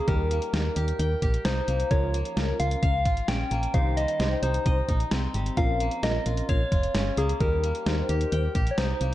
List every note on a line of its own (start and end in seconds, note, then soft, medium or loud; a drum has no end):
0.00 0.13 F3 medium
0.00 0.30 A#3 medium
0.00 2.13 C#4 medium
0.00 1.58 F4 medium
0.00 0.60 F5 medium
0.08 0.40 D#2 loud
0.08 1.96 G3 medium
0.08 0.36 D#4 medium
0.08 0.36 G4 medium
0.08 0.36 A#4 medium
0.08 1.47 A#4 loud
0.08 kick loud
0.08 closed hi-hat medium
0.31 1.68 A#3 medium
0.31 closed hi-hat medium
0.42 closed hi-hat soft
0.53 0.69 D#2 loud
0.53 1.11 D#4 medium
0.53 1.11 G4 medium
0.53 1.11 A#4 medium
0.53 snare loud
0.53 closed hi-hat medium
0.76 0.92 D#2 loud
0.76 1.22 G4 medium
0.76 closed hi-hat medium
0.88 closed hi-hat medium
0.99 1.15 D#2 loud
0.99 2.34 G5 medium
0.99 closed hi-hat medium
1.22 1.38 A#1 medium
1.22 3.26 G4 medium
1.22 kick medium
1.22 closed hi-hat medium
1.34 closed hi-hat soft
1.45 1.61 C2 loud
1.45 3.79 D#4 medium
1.45 1.90 C5 medium
1.45 snare loud
1.45 closed hi-hat medium
1.68 1.84 C2 medium
1.68 2.13 A#3 medium
1.68 closed hi-hat medium
1.80 closed hi-hat soft
1.91 2.23 C#2 loud
1.91 3.79 F3 medium
1.91 2.20 C#4 medium
1.91 2.20 F4 medium
1.91 2.20 A#4 medium
1.91 2.56 C#5 loud
1.91 kick loud
1.91 closed hi-hat medium
2.14 3.51 A#3 medium
2.14 closed hi-hat medium
2.25 closed hi-hat soft
2.37 2.53 C#2 loud
2.37 2.94 C#4 medium
2.37 2.94 F4 medium
2.37 2.94 A#4 medium
2.37 snare loud
2.37 closed hi-hat medium
2.60 2.76 C#2 loud
2.60 3.05 F4 medium
2.60 2.81 F5 loud
2.60 closed hi-hat medium
2.71 closed hi-hat medium
2.82 3.07 C#2 medium
2.82 3.30 F5 loud
2.82 4.27 F5 medium
2.82 kick medium
2.82 closed hi-hat medium
3.05 3.22 G#1 medium
3.05 5.24 F4 medium
3.05 kick medium
3.05 closed hi-hat medium
3.17 closed hi-hat soft
3.28 3.44 A#1 medium
3.28 5.18 C#4 medium
3.28 3.76 G5 loud
3.28 snare loud
3.28 closed hi-hat medium
3.51 3.67 A#1 medium
3.51 5.80 A#3 medium
3.51 closed hi-hat medium
3.63 closed hi-hat soft
3.74 4.06 C2 loud
3.74 5.62 D#3 medium
3.74 4.03 D#4 medium
3.74 4.03 G4 medium
3.74 4.03 C5 medium
3.74 3.96 F5 loud
3.74 kick loud
3.74 closed hi-hat medium
3.97 5.33 G3 medium
3.97 4.44 D#5 loud
3.97 closed hi-hat medium
4.08 closed hi-hat soft
4.20 4.36 C2 loud
4.20 4.77 D#4 medium
4.20 4.77 G4 medium
4.20 4.77 C5 medium
4.20 snare loud
4.20 closed hi-hat medium
4.42 4.59 C2 loud
4.42 4.88 D#4 medium
4.42 4.89 C5 medium
4.42 closed hi-hat medium
4.54 closed hi-hat medium
4.66 4.82 C2 loud
4.66 6.21 D#5 medium
4.66 kick medium
4.66 closed hi-hat medium
4.89 5.05 A#1 loud
4.89 7.23 D#4 medium
4.89 kick medium
4.89 closed hi-hat medium
5.00 closed hi-hat soft
5.11 5.28 C2 medium
5.11 7.01 C4 medium
5.11 snare loud
5.11 closed hi-hat medium
5.34 5.50 G#1 medium
5.34 5.62 G3 medium
5.34 closed hi-hat medium
5.46 closed hi-hat soft
5.57 5.89 A#1 loud
5.57 7.46 F3 medium
5.57 5.86 C#4 medium
5.57 5.86 F4 medium
5.57 5.86 A#4 medium
5.57 6.05 F5 loud
5.57 kick loud
5.57 closed hi-hat medium
5.80 7.17 A#3 medium
5.80 closed hi-hat medium
5.91 closed hi-hat soft
6.03 6.19 A#1 loud
6.03 6.60 C#4 medium
6.03 6.60 F4 medium
6.03 6.60 A#4 medium
6.03 6.48 D#5 loud
6.03 snare loud
6.03 closed hi-hat medium
6.26 6.42 A#1 loud
6.26 6.71 F4 medium
6.26 closed hi-hat medium
6.37 closed hi-hat medium
6.49 6.65 A#1 loud
6.49 7.19 C#5 loud
6.49 7.93 F5 medium
6.49 kick medium
6.49 closed hi-hat medium
6.72 6.88 F1 medium
6.72 8.91 F4 medium
6.72 kick medium
6.72 closed hi-hat medium
6.83 closed hi-hat soft
6.95 7.11 G1 medium
6.95 9.14 C#4 medium
6.95 snare loud
6.95 closed hi-hat medium
7.17 7.34 C#2 loud
7.17 7.63 A#3 medium
7.17 7.42 G#4 medium
7.17 closed hi-hat medium
7.29 closed hi-hat soft
7.40 7.73 D#2 loud
7.40 9.14 G3 medium
7.40 7.69 D#4 medium
7.40 7.69 G4 medium
7.40 7.69 A#4 medium
7.40 8.70 A#4 loud
7.40 kick loud
7.40 closed hi-hat medium
7.64 9.00 A#3 medium
7.64 closed hi-hat medium
7.75 closed hi-hat soft
7.86 8.02 D#2 loud
7.86 8.43 D#4 medium
7.86 8.43 G4 medium
7.86 8.43 C5 medium
7.86 snare loud
7.86 closed hi-hat medium
8.09 8.25 D#2 loud
8.09 8.55 G4 medium
8.09 closed hi-hat medium
8.21 closed hi-hat medium
8.32 8.48 D#2 loud
8.32 9.14 G5 medium
8.32 closed hi-hat medium
8.55 8.71 A#1 medium
8.55 9.14 G4 medium
8.55 kick medium
8.55 closed hi-hat medium
8.67 closed hi-hat soft
8.71 8.80 C#5 medium
8.78 8.94 C2 medium
8.78 9.14 D#4 medium
8.78 9.14 C5 medium
8.78 snare loud
8.78 closed hi-hat medium
9.01 9.14 C2 medium
9.01 9.14 A#3 medium
9.01 closed hi-hat medium